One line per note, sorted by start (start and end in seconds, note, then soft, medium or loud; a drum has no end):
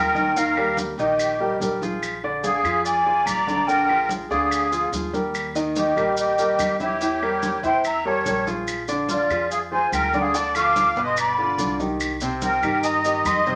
0.00 0.92 D#2 medium
0.00 0.33 A#4 medium
0.00 0.38 G5 medium
0.14 0.32 D#3 medium
0.14 0.32 D#4 medium
0.14 0.32 D#5 medium
0.14 high conga medium
0.14 maracas soft
0.35 0.53 D#3 medium
0.35 0.53 D#4 medium
0.35 0.77 A#4 medium
0.35 0.53 D#5 medium
0.35 0.78 F5 loud
0.35 high conga soft
0.35 maracas medium
0.57 0.91 G3 medium
0.57 0.91 G4 medium
0.57 0.91 A#4 medium
0.57 high conga soft
0.57 claves medium
0.77 high conga medium
0.77 maracas medium
0.98 1.56 A#1 medium
0.98 1.33 D#3 medium
0.98 1.33 D#4 medium
0.98 1.56 G4 medium
0.98 1.57 D#5 medium
0.98 1.33 D#5 medium
0.98 high conga soft
0.98 maracas soft
1.19 high conga soft
1.19 claves medium
1.19 maracas medium
1.40 1.57 G3 medium
1.40 1.57 G4 medium
1.40 1.57 A#4 medium
1.40 high conga soft
1.60 2.58 A#1 medium
1.60 1.78 G3 medium
1.60 1.78 G4 medium
1.60 1.78 A#4 medium
1.60 high conga medium
1.60 maracas medium
1.82 2.16 F3 medium
1.82 2.16 F4 medium
1.82 2.16 G#4 medium
1.82 high conga medium
1.82 maracas soft
2.03 high conga soft
2.03 claves medium
2.03 maracas medium
2.23 2.57 D3 medium
2.23 2.58 D4 medium
2.23 2.58 D5 medium
2.23 high conga soft
2.43 2.82 G#4 medium
2.43 2.82 F5 medium
2.43 high conga medium
2.43 maracas medium
2.64 3.22 F2 medium
2.64 2.98 F3 medium
2.64 2.99 F4 medium
2.64 2.99 G#4 medium
2.64 high conga soft
2.64 claves medium
2.64 maracas soft
2.85 3.24 D5 medium
2.85 3.27 G#5 medium
2.85 high conga soft
2.85 maracas medium
3.06 3.40 F3 medium
3.06 3.40 F4 medium
3.06 3.40 G#4 medium
3.06 high conga soft
3.25 4.24 A#1 medium
3.25 3.68 D5 medium
3.25 3.68 A#5 medium
3.25 high conga medium
3.25 claves medium
3.25 maracas medium
3.47 3.64 D3 medium
3.47 3.65 D4 medium
3.47 3.65 D5 medium
3.47 high conga medium
3.47 maracas soft
3.67 3.85 D3 medium
3.67 3.85 D4 medium
3.67 4.09 A#4 medium
3.67 3.86 D5 medium
3.67 4.09 G5 medium
3.67 high conga soft
3.67 maracas medium
3.89 4.23 F3 medium
3.89 4.24 F4 medium
3.89 4.24 G#4 medium
3.89 high conga soft
3.89 claves medium
4.09 high conga medium
4.09 maracas medium
4.30 4.89 D2 medium
4.30 4.65 D3 medium
4.30 4.65 D4 medium
4.30 4.89 G#4 medium
4.30 4.65 D5 medium
4.30 4.89 F5 medium
4.30 high conga soft
4.30 maracas soft
4.51 high conga soft
4.51 claves medium
4.51 maracas medium
4.72 4.89 F3 medium
4.72 4.89 F4 medium
4.72 4.89 G#4 medium
4.72 high conga soft
4.72 maracas medium
4.92 5.91 D#2 medium
4.92 5.10 F3 medium
4.92 5.10 F4 medium
4.92 5.10 G#4 medium
4.92 high conga medium
4.92 maracas medium
5.13 5.48 G3 medium
5.13 5.48 G4 medium
5.13 5.48 A#4 medium
5.13 high conga medium
5.13 maracas soft
5.34 high conga soft
5.34 claves medium
5.34 maracas medium
5.55 5.89 D#3 medium
5.55 5.90 D#4 medium
5.55 5.90 D#5 medium
5.55 high conga soft
5.55 maracas medium
5.76 6.15 G4 medium
5.76 6.15 D#5 medium
5.76 high conga medium
5.76 maracas medium
5.96 6.55 A#1 medium
5.96 6.31 G3 medium
5.96 6.31 G4 medium
5.96 6.31 A#4 medium
5.96 high conga soft
5.96 claves medium
5.96 maracas soft
6.17 6.76 G4 medium
6.17 6.76 D#5 medium
6.17 high conga soft
6.17 maracas medium
6.38 6.73 G3 medium
6.38 6.73 G4 medium
6.38 6.73 A#4 medium
6.38 high conga soft
6.38 maracas medium
6.59 7.57 E2 medium
6.59 high conga medium
6.59 claves medium
6.59 maracas medium
6.80 6.97 E3 medium
6.80 6.97 E4 medium
6.80 7.60 G4 medium
6.80 7.60 C#5 medium
6.80 6.98 E5 medium
6.80 high conga medium
6.80 maracas soft
7.01 7.18 E3 medium
7.01 7.19 E4 medium
7.01 7.19 E5 medium
7.01 high conga soft
7.01 maracas medium
7.22 7.56 G3 medium
7.22 7.56 G4 medium
7.22 7.57 A#4 medium
7.22 high conga soft
7.22 claves medium
7.42 high conga medium
7.42 maracas medium
7.63 8.22 E2 medium
7.63 7.98 E3 medium
7.63 7.98 E4 medium
7.63 7.83 C5 medium
7.63 7.98 E5 medium
7.63 7.84 G5 medium
7.63 high conga soft
7.63 maracas soft
7.84 8.04 E5 medium
7.84 8.08 A#5 medium
7.84 high conga soft
7.84 claves medium
7.84 maracas medium
8.05 8.22 G3 medium
8.05 8.22 G4 medium
8.05 8.23 A#4 medium
8.05 8.47 C#5 medium
8.05 8.48 A5 medium
8.05 high conga soft
8.25 9.24 A#1 medium
8.25 8.43 G3 medium
8.25 8.43 G4 medium
8.25 8.44 A#4 medium
8.25 high conga medium
8.25 maracas medium
8.47 8.81 F3 medium
8.47 8.81 F4 medium
8.47 8.81 G#4 medium
8.47 high conga medium
8.47 maracas soft
8.68 high conga soft
8.68 claves medium
8.68 maracas medium
8.88 9.22 D3 medium
8.88 9.23 D4 medium
8.88 9.23 D5 medium
8.88 high conga soft
8.88 maracas medium
9.09 9.48 F4 medium
9.09 9.49 D5 medium
9.09 high conga medium
9.09 maracas medium
9.30 9.88 F2 medium
9.30 9.65 F3 medium
9.30 9.64 F4 medium
9.30 9.65 G#4 medium
9.30 high conga soft
9.30 claves medium
9.30 maracas soft
9.51 9.60 G#4 medium
9.51 9.58 F5 medium
9.51 high conga soft
9.51 maracas medium
9.72 10.06 F3 medium
9.72 10.06 F4 medium
9.72 10.06 G#4 medium
9.72 9.91 C5 medium
9.72 9.92 G#5 medium
9.72 high conga soft
9.92 10.90 D2 medium
9.92 10.19 A#4 medium
9.92 10.23 G5 medium
9.92 high conga medium
9.92 claves medium
9.92 maracas medium
10.13 10.31 D3 medium
10.13 10.31 D4 medium
10.13 10.31 D5 medium
10.13 high conga medium
10.13 maracas soft
10.21 10.34 G#4 medium
10.21 10.36 F5 medium
10.34 10.51 D3 medium
10.34 10.52 D4 medium
10.34 10.55 D5 medium
10.34 10.52 D5 medium
10.34 10.55 A5 loud
10.34 maracas medium
10.55 10.89 F3 medium
10.55 10.89 F4 medium
10.55 10.90 A4 medium
10.55 11.00 F5 medium
10.55 11.01 D6 loud
10.55 high conga soft
10.55 claves medium
10.55 maracas medium
10.76 high conga medium
10.76 maracas medium
10.96 11.55 G1 medium
10.96 11.31 B2 medium
10.96 11.31 B3 medium
10.96 11.31 B4 medium
10.96 high conga soft
10.96 maracas soft
11.04 11.17 D#5 medium
11.04 11.18 C6 medium
11.17 11.76 D5 medium
11.17 11.77 B5 medium
11.17 high conga soft
11.17 claves medium
11.17 maracas medium
11.38 11.55 D3 medium
11.38 11.55 D4 medium
11.38 11.56 F4 medium
11.38 high conga soft
11.58 12.56 C2 medium
11.58 11.76 D3 medium
11.58 11.76 D4 medium
11.58 11.76 F4 medium
11.58 high conga medium
11.58 maracas medium
11.79 12.14 D#3 medium
11.79 12.14 D#4 medium
11.79 12.14 G4 medium
11.79 high conga medium
11.79 maracas soft
12.00 claves medium
12.00 maracas medium
12.21 12.56 C3 medium
12.21 12.56 C4 medium
12.21 12.56 C5 medium
12.21 high conga soft
12.21 maracas medium
12.42 12.81 A#4 medium
12.42 12.86 G5 medium
12.42 high conga medium
12.42 maracas medium
12.62 13.21 G2 medium
12.62 12.97 D#3 medium
12.62 12.98 D#4 medium
12.62 12.98 G4 medium
12.62 high conga soft
12.62 claves medium
12.62 maracas soft
12.83 13.24 D#5 medium
12.83 13.27 A#5 medium
12.83 high conga soft
12.83 maracas medium
13.04 13.39 D#3 medium
13.04 13.39 D#4 medium
13.04 13.39 G4 medium
13.04 high conga soft
13.04 maracas soft
13.25 13.55 F2 medium
13.25 13.55 D#5 medium
13.25 13.55 C6 medium
13.25 high conga medium
13.25 claves medium
13.25 maracas medium
13.46 13.55 C3 medium
13.46 13.55 C4 medium
13.46 13.55 C5 medium
13.46 high conga medium
13.46 maracas soft